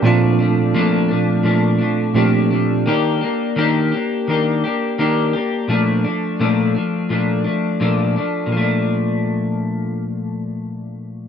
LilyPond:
<<
  \new Staff \with { instrumentName = "Tine electric piano" } { \time 4/4 \key bes \major \tempo 4 = 85 <bes, a c' d' f'>2. <bes, a c' d' g'>4 | r1 | r1 | r1 | }
  \new Staff \with { instrumentName = "Clean electric guitar" } { \time 4/4 \key bes \major <bes, f a d'>8 <f a d'>8 <bes, f a d'>8 <f a d'>8 <bes, f a d'>8 <f a d'>8 <bes, f a d'>8 <f a d'>8 | <ees bes d' g'>8 <bes d' g'>8 <ees bes d' g'>8 <bes d' g'>8 <ees bes d' g'>8 <bes d' g'>8 <ees bes d' g'>8 <bes d' g'>8 | <bes, f a d'>8 <f a d'>8 <bes, f a d'>8 <f a d'>8 <bes, f a d'>8 <f a d'>8 <bes, f a d'>8 <f a d'>8 | <bes, f a d'>1 | }
>>